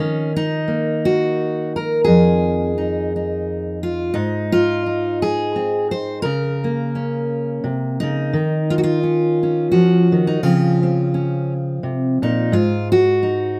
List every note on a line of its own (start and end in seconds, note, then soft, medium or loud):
0.00 4.15 D#3 medium
0.00 0.36 C#4 medium
0.36 1.76 D#4 medium
0.68 2.03 A#3 soft
1.05 1.75 F#4 medium
1.76 2.04 A#4 medium
2.04 4.15 F2 medium
2.04 3.83 G#4 loud
2.78 3.15 D#4 soft
3.16 4.12 D#4 soft
3.83 4.15 F4 medium
4.14 6.21 G#2 medium
4.14 4.84 D#4 medium
4.52 5.22 F4 loud
4.86 6.21 D#4 soft
5.22 5.91 G#4 loud
5.56 6.21 C4 soft
5.91 6.22 C5 loud
6.22 7.63 C#3 medium
6.22 8.32 A#4 loud
6.64 8.30 A#3 soft
6.95 7.67 C#4 medium
7.64 8.02 C3 medium
8.00 8.34 C#3 medium
8.00 9.02 D#4 medium
8.33 9.73 D#3 medium
8.70 8.78 F4 loud
8.78 8.83 F#4 medium
8.84 9.71 F4 loud
9.03 9.43 C#4 soft
9.43 10.27 C#4 soft
9.72 10.12 F3 medium
9.72 10.43 F#4 medium
10.12 10.43 D#3 medium
10.27 10.43 D#4 medium
10.43 11.82 C#3 medium
10.43 12.48 F3 soft
10.43 10.82 C4 soft
10.43 11.13 C#4 soft
10.43 12.52 F4 medium
10.83 12.49 C4 soft
11.14 11.52 C#4 medium
11.83 12.22 C3 medium
12.22 12.52 A#2 medium
12.22 12.53 D#4 medium
12.52 13.60 G#2 medium
12.52 12.91 F4 loud
12.92 13.60 F#4 loud
13.23 13.60 D#4 soft